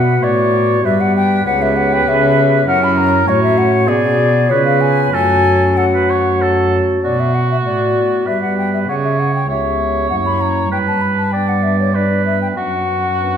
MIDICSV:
0, 0, Header, 1, 5, 480
1, 0, Start_track
1, 0, Key_signature, 2, "minor"
1, 0, Tempo, 609756
1, 1145, Time_signature, 3, 2, 24, 8
1, 2580, Key_signature, 3, "minor"
1, 3057, Tempo, 631579
1, 5456, Key_signature, 2, "minor"
1, 5457, Tempo, 616650
1, 10386, End_track
2, 0, Start_track
2, 0, Title_t, "Flute"
2, 0, Program_c, 0, 73
2, 0, Note_on_c, 0, 78, 93
2, 186, Note_on_c, 0, 74, 100
2, 198, Note_off_c, 0, 78, 0
2, 662, Note_off_c, 0, 74, 0
2, 667, Note_on_c, 0, 76, 101
2, 791, Note_on_c, 0, 78, 96
2, 803, Note_off_c, 0, 76, 0
2, 908, Note_off_c, 0, 78, 0
2, 918, Note_on_c, 0, 79, 113
2, 1147, Note_off_c, 0, 79, 0
2, 1153, Note_on_c, 0, 78, 106
2, 1277, Note_on_c, 0, 76, 94
2, 1289, Note_off_c, 0, 78, 0
2, 1389, Note_on_c, 0, 78, 92
2, 1401, Note_off_c, 0, 76, 0
2, 1518, Note_on_c, 0, 79, 104
2, 1530, Note_off_c, 0, 78, 0
2, 1640, Note_on_c, 0, 76, 109
2, 1652, Note_off_c, 0, 79, 0
2, 2105, Note_off_c, 0, 76, 0
2, 2109, Note_on_c, 0, 78, 117
2, 2234, Note_on_c, 0, 83, 103
2, 2246, Note_off_c, 0, 78, 0
2, 2343, Note_on_c, 0, 82, 104
2, 2355, Note_off_c, 0, 83, 0
2, 2588, Note_on_c, 0, 73, 99
2, 2600, Note_off_c, 0, 82, 0
2, 2695, Note_off_c, 0, 73, 0
2, 2700, Note_on_c, 0, 76, 91
2, 2818, Note_on_c, 0, 78, 92
2, 2830, Note_off_c, 0, 76, 0
2, 3059, Note_on_c, 0, 74, 108
2, 3071, Note_off_c, 0, 78, 0
2, 3520, Note_on_c, 0, 73, 97
2, 3531, Note_off_c, 0, 74, 0
2, 3637, Note_off_c, 0, 73, 0
2, 3642, Note_on_c, 0, 77, 91
2, 3761, Note_on_c, 0, 80, 97
2, 3772, Note_off_c, 0, 77, 0
2, 4004, Note_off_c, 0, 80, 0
2, 4009, Note_on_c, 0, 80, 115
2, 4492, Note_on_c, 0, 78, 89
2, 4503, Note_off_c, 0, 80, 0
2, 5216, Note_off_c, 0, 78, 0
2, 5455, Note_on_c, 0, 74, 74
2, 5580, Note_on_c, 0, 76, 65
2, 5592, Note_off_c, 0, 74, 0
2, 5693, Note_on_c, 0, 78, 61
2, 5705, Note_off_c, 0, 76, 0
2, 5815, Note_off_c, 0, 78, 0
2, 5823, Note_on_c, 0, 76, 63
2, 5870, Note_off_c, 0, 76, 0
2, 5938, Note_on_c, 0, 74, 71
2, 6407, Note_off_c, 0, 74, 0
2, 6414, Note_on_c, 0, 76, 76
2, 6528, Note_off_c, 0, 76, 0
2, 6533, Note_on_c, 0, 78, 63
2, 6646, Note_off_c, 0, 78, 0
2, 6651, Note_on_c, 0, 79, 76
2, 6769, Note_off_c, 0, 79, 0
2, 6778, Note_on_c, 0, 76, 60
2, 6825, Note_off_c, 0, 76, 0
2, 6895, Note_on_c, 0, 78, 78
2, 6942, Note_off_c, 0, 78, 0
2, 7014, Note_on_c, 0, 76, 62
2, 7133, Note_on_c, 0, 78, 66
2, 7144, Note_off_c, 0, 76, 0
2, 7250, Note_off_c, 0, 78, 0
2, 7254, Note_on_c, 0, 79, 72
2, 7365, Note_off_c, 0, 79, 0
2, 7370, Note_on_c, 0, 76, 73
2, 7833, Note_off_c, 0, 76, 0
2, 7837, Note_on_c, 0, 78, 84
2, 7884, Note_off_c, 0, 78, 0
2, 7959, Note_on_c, 0, 83, 82
2, 8080, Note_on_c, 0, 82, 85
2, 8091, Note_off_c, 0, 83, 0
2, 8317, Note_off_c, 0, 82, 0
2, 8323, Note_on_c, 0, 79, 89
2, 8370, Note_off_c, 0, 79, 0
2, 8438, Note_on_c, 0, 81, 80
2, 8549, Note_on_c, 0, 83, 74
2, 8561, Note_off_c, 0, 81, 0
2, 8667, Note_off_c, 0, 83, 0
2, 8671, Note_on_c, 0, 81, 83
2, 8787, Note_on_c, 0, 79, 90
2, 8798, Note_off_c, 0, 81, 0
2, 8917, Note_on_c, 0, 78, 73
2, 8929, Note_off_c, 0, 79, 0
2, 9030, Note_on_c, 0, 76, 77
2, 9042, Note_off_c, 0, 78, 0
2, 9153, Note_off_c, 0, 76, 0
2, 9160, Note_on_c, 0, 73, 60
2, 9272, Note_off_c, 0, 73, 0
2, 9277, Note_on_c, 0, 74, 76
2, 9513, Note_off_c, 0, 74, 0
2, 9518, Note_on_c, 0, 76, 77
2, 9637, Note_off_c, 0, 76, 0
2, 9643, Note_on_c, 0, 79, 74
2, 9690, Note_off_c, 0, 79, 0
2, 9756, Note_on_c, 0, 78, 78
2, 10386, Note_off_c, 0, 78, 0
2, 10386, End_track
3, 0, Start_track
3, 0, Title_t, "Oboe"
3, 0, Program_c, 1, 68
3, 0, Note_on_c, 1, 71, 76
3, 180, Note_on_c, 1, 73, 70
3, 192, Note_off_c, 1, 71, 0
3, 668, Note_on_c, 1, 71, 66
3, 680, Note_off_c, 1, 73, 0
3, 1148, Note_off_c, 1, 71, 0
3, 1152, Note_on_c, 1, 71, 91
3, 2088, Note_off_c, 1, 71, 0
3, 2107, Note_on_c, 1, 70, 75
3, 2572, Note_off_c, 1, 70, 0
3, 2577, Note_on_c, 1, 73, 84
3, 3052, Note_on_c, 1, 68, 73
3, 3064, Note_off_c, 1, 73, 0
3, 3527, Note_off_c, 1, 68, 0
3, 3531, Note_on_c, 1, 71, 76
3, 4012, Note_on_c, 1, 69, 84
3, 4023, Note_off_c, 1, 71, 0
3, 4490, Note_off_c, 1, 69, 0
3, 4495, Note_on_c, 1, 69, 68
3, 4550, Note_off_c, 1, 69, 0
3, 4622, Note_on_c, 1, 71, 81
3, 4741, Note_on_c, 1, 73, 78
3, 4753, Note_off_c, 1, 71, 0
3, 4982, Note_on_c, 1, 69, 72
3, 4993, Note_off_c, 1, 73, 0
3, 5331, Note_off_c, 1, 69, 0
3, 5460, Note_on_c, 1, 66, 74
3, 6412, Note_on_c, 1, 71, 54
3, 6424, Note_off_c, 1, 66, 0
3, 6890, Note_off_c, 1, 71, 0
3, 6896, Note_on_c, 1, 73, 70
3, 7360, Note_off_c, 1, 73, 0
3, 7364, Note_on_c, 1, 73, 67
3, 8297, Note_off_c, 1, 73, 0
3, 8318, Note_on_c, 1, 71, 81
3, 8787, Note_off_c, 1, 71, 0
3, 8795, Note_on_c, 1, 74, 65
3, 9275, Note_on_c, 1, 71, 60
3, 9286, Note_off_c, 1, 74, 0
3, 9754, Note_off_c, 1, 71, 0
3, 9759, Note_on_c, 1, 66, 68
3, 10386, Note_off_c, 1, 66, 0
3, 10386, End_track
4, 0, Start_track
4, 0, Title_t, "Pipe organ"
4, 0, Program_c, 2, 19
4, 0, Note_on_c, 2, 47, 57
4, 0, Note_on_c, 2, 59, 52
4, 0, Note_on_c, 2, 66, 57
4, 0, Note_on_c, 2, 71, 51
4, 146, Note_off_c, 2, 47, 0
4, 174, Note_on_c, 2, 45, 61
4, 614, Note_off_c, 2, 59, 0
4, 622, Note_off_c, 2, 66, 0
4, 626, Note_off_c, 2, 71, 0
4, 629, Note_off_c, 2, 45, 0
4, 631, Note_on_c, 2, 59, 54
4, 640, Note_on_c, 2, 67, 58
4, 654, Note_on_c, 2, 74, 52
4, 664, Note_on_c, 2, 43, 69
4, 1096, Note_off_c, 2, 59, 0
4, 1110, Note_off_c, 2, 67, 0
4, 1112, Note_on_c, 2, 59, 63
4, 1115, Note_off_c, 2, 43, 0
4, 1125, Note_on_c, 2, 67, 63
4, 1127, Note_off_c, 2, 74, 0
4, 1138, Note_on_c, 2, 73, 60
4, 1148, Note_on_c, 2, 37, 68
4, 1595, Note_off_c, 2, 37, 0
4, 1627, Note_on_c, 2, 49, 72
4, 2058, Note_off_c, 2, 59, 0
4, 2065, Note_off_c, 2, 67, 0
4, 2070, Note_on_c, 2, 61, 61
4, 2071, Note_off_c, 2, 73, 0
4, 2073, Note_off_c, 2, 49, 0
4, 2084, Note_on_c, 2, 64, 62
4, 2093, Note_on_c, 2, 73, 56
4, 2104, Note_on_c, 2, 42, 67
4, 2537, Note_off_c, 2, 61, 0
4, 2549, Note_off_c, 2, 42, 0
4, 2552, Note_on_c, 2, 61, 58
4, 2556, Note_off_c, 2, 64, 0
4, 2560, Note_off_c, 2, 73, 0
4, 2565, Note_on_c, 2, 66, 64
4, 2575, Note_on_c, 2, 73, 62
4, 2587, Note_on_c, 2, 45, 68
4, 3023, Note_on_c, 2, 59, 63
4, 3028, Note_off_c, 2, 45, 0
4, 3028, Note_off_c, 2, 61, 0
4, 3035, Note_off_c, 2, 66, 0
4, 3035, Note_on_c, 2, 68, 62
4, 3040, Note_off_c, 2, 73, 0
4, 3049, Note_on_c, 2, 74, 61
4, 3062, Note_on_c, 2, 47, 60
4, 3473, Note_off_c, 2, 59, 0
4, 3488, Note_on_c, 2, 59, 57
4, 3501, Note_off_c, 2, 47, 0
4, 3501, Note_on_c, 2, 65, 58
4, 3504, Note_off_c, 2, 68, 0
4, 3511, Note_off_c, 2, 74, 0
4, 3511, Note_on_c, 2, 73, 54
4, 3526, Note_on_c, 2, 49, 57
4, 3975, Note_off_c, 2, 59, 0
4, 3978, Note_off_c, 2, 49, 0
4, 3981, Note_off_c, 2, 65, 0
4, 3982, Note_on_c, 2, 57, 52
4, 3987, Note_off_c, 2, 73, 0
4, 3994, Note_on_c, 2, 66, 48
4, 4004, Note_on_c, 2, 73, 51
4, 4017, Note_on_c, 2, 42, 63
4, 5276, Note_off_c, 2, 42, 0
4, 5411, Note_off_c, 2, 57, 0
4, 5417, Note_off_c, 2, 66, 0
4, 5422, Note_off_c, 2, 73, 0
4, 5452, Note_on_c, 2, 47, 46
4, 5905, Note_off_c, 2, 47, 0
4, 5936, Note_on_c, 2, 59, 37
4, 5938, Note_on_c, 2, 45, 43
4, 5941, Note_on_c, 2, 74, 40
4, 5942, Note_on_c, 2, 66, 34
4, 6384, Note_off_c, 2, 59, 0
4, 6385, Note_off_c, 2, 45, 0
4, 6387, Note_off_c, 2, 66, 0
4, 6387, Note_off_c, 2, 74, 0
4, 6415, Note_on_c, 2, 43, 46
4, 6415, Note_on_c, 2, 59, 34
4, 6420, Note_on_c, 2, 74, 34
4, 6421, Note_on_c, 2, 67, 38
4, 6861, Note_off_c, 2, 43, 0
4, 6861, Note_off_c, 2, 59, 0
4, 6863, Note_off_c, 2, 74, 0
4, 6864, Note_off_c, 2, 67, 0
4, 6899, Note_on_c, 2, 49, 44
4, 7339, Note_off_c, 2, 49, 0
4, 7369, Note_on_c, 2, 59, 42
4, 7371, Note_on_c, 2, 37, 47
4, 7374, Note_on_c, 2, 67, 39
4, 7375, Note_on_c, 2, 73, 41
4, 7812, Note_off_c, 2, 37, 0
4, 7812, Note_off_c, 2, 59, 0
4, 7814, Note_off_c, 2, 67, 0
4, 7814, Note_off_c, 2, 73, 0
4, 7844, Note_on_c, 2, 58, 39
4, 7846, Note_on_c, 2, 42, 53
4, 7849, Note_on_c, 2, 64, 41
4, 7853, Note_on_c, 2, 73, 40
4, 8287, Note_off_c, 2, 58, 0
4, 8288, Note_off_c, 2, 42, 0
4, 8290, Note_off_c, 2, 64, 0
4, 8292, Note_off_c, 2, 73, 0
4, 8318, Note_on_c, 2, 43, 51
4, 8798, Note_on_c, 2, 59, 41
4, 8798, Note_on_c, 2, 62, 45
4, 8802, Note_on_c, 2, 71, 46
4, 9246, Note_off_c, 2, 59, 0
4, 9246, Note_off_c, 2, 62, 0
4, 9248, Note_off_c, 2, 71, 0
4, 9272, Note_on_c, 2, 59, 44
4, 9276, Note_on_c, 2, 62, 40
4, 9277, Note_on_c, 2, 71, 42
4, 9728, Note_off_c, 2, 59, 0
4, 9730, Note_off_c, 2, 43, 0
4, 9730, Note_off_c, 2, 62, 0
4, 9730, Note_off_c, 2, 71, 0
4, 9759, Note_on_c, 2, 42, 42
4, 10252, Note_on_c, 2, 59, 38
4, 10258, Note_on_c, 2, 62, 36
4, 10261, Note_on_c, 2, 71, 40
4, 10386, Note_off_c, 2, 42, 0
4, 10386, Note_off_c, 2, 59, 0
4, 10386, Note_off_c, 2, 62, 0
4, 10386, Note_off_c, 2, 71, 0
4, 10386, End_track
5, 0, Start_track
5, 0, Title_t, "Cello"
5, 0, Program_c, 3, 42
5, 0, Note_on_c, 3, 47, 67
5, 176, Note_off_c, 3, 47, 0
5, 181, Note_on_c, 3, 45, 73
5, 655, Note_off_c, 3, 45, 0
5, 666, Note_on_c, 3, 43, 72
5, 1137, Note_off_c, 3, 43, 0
5, 1148, Note_on_c, 3, 37, 82
5, 1617, Note_off_c, 3, 37, 0
5, 1632, Note_on_c, 3, 49, 74
5, 2098, Note_off_c, 3, 49, 0
5, 2105, Note_on_c, 3, 42, 85
5, 2571, Note_off_c, 3, 42, 0
5, 2586, Note_on_c, 3, 45, 76
5, 3060, Note_on_c, 3, 47, 72
5, 3072, Note_off_c, 3, 45, 0
5, 3529, Note_on_c, 3, 49, 69
5, 3541, Note_off_c, 3, 47, 0
5, 4003, Note_off_c, 3, 49, 0
5, 4007, Note_on_c, 3, 42, 70
5, 5275, Note_off_c, 3, 42, 0
5, 5455, Note_on_c, 3, 47, 52
5, 5906, Note_off_c, 3, 47, 0
5, 5931, Note_on_c, 3, 45, 48
5, 6403, Note_off_c, 3, 45, 0
5, 6410, Note_on_c, 3, 43, 55
5, 6880, Note_off_c, 3, 43, 0
5, 6893, Note_on_c, 3, 49, 63
5, 7357, Note_off_c, 3, 49, 0
5, 7361, Note_on_c, 3, 37, 49
5, 7840, Note_on_c, 3, 42, 54
5, 7851, Note_off_c, 3, 37, 0
5, 8307, Note_off_c, 3, 42, 0
5, 8312, Note_on_c, 3, 43, 57
5, 9727, Note_off_c, 3, 43, 0
5, 9760, Note_on_c, 3, 42, 55
5, 10386, Note_off_c, 3, 42, 0
5, 10386, End_track
0, 0, End_of_file